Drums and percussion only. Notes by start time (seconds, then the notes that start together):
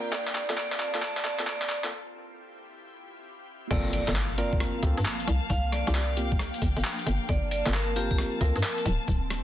0.12 clap, closed hi-hat
0.27 clap
0.35 clap, closed hi-hat
0.50 clap, closed hi-hat
0.57 clap
0.72 clap
0.80 clap, closed hi-hat
0.94 clap
1.02 clap, closed hi-hat
1.17 clap, closed hi-hat
1.24 clap, closed hi-hat
1.39 clap, closed hi-hat
1.47 clap
1.62 clap, closed hi-hat
1.69 clap, closed hi-hat
1.84 clap
3.71 kick, closed hi-hat, crash
3.93 closed hi-hat
4.08 clap, closed hi-hat
4.16 cross-stick, clap
4.38 closed hi-hat
4.53 kick
4.60 cross-stick, closed hi-hat
4.83 kick, closed hi-hat
4.98 closed hi-hat
5.05 clap
5.20 closed hi-hat
5.28 closed hi-hat
5.50 kick, closed hi-hat
5.72 cross-stick, closed hi-hat
5.87 closed hi-hat
5.95 cross-stick, clap
6.17 closed hi-hat
6.32 kick
6.39 cross-stick, closed hi-hat
6.54 closed hi-hat
6.62 kick, closed hi-hat
6.77 closed hi-hat
6.84 clap
6.99 closed hi-hat
7.07 closed hi-hat
7.29 kick, closed hi-hat
7.51 closed hi-hat
7.66 clap, closed hi-hat
7.74 cross-stick, clap
7.96 closed hi-hat
8.11 kick
8.18 cross-stick, closed hi-hat
8.41 kick, closed hi-hat
8.56 closed hi-hat
8.63 clap
8.78 closed hi-hat
8.86 closed hi-hat
9.08 kick, closed hi-hat
9.30 cross-stick, closed hi-hat